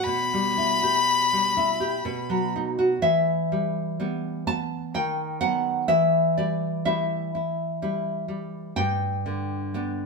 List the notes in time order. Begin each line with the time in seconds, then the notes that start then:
0.04 B2 B5
0.34 G3
0.58 E4
0.83 G4
1.33 G3
1.57 E4
1.80 G4
2.05 B2
2.30 F#3
2.56 D#4
2.79 F#4
3.02 E3 E5
3.52 G3
4.00 G3 B3
4.47 B3 A5
4.94 D#3 G5
5.41 F#3 B3 F#5
5.88 E3 E5
6.38 G3 D5
6.85 G3 E4 E5
7.35 E4
7.82 G3 E4
8.28 G3
8.76 G2 G5
9.26 D3
9.74 B3 D4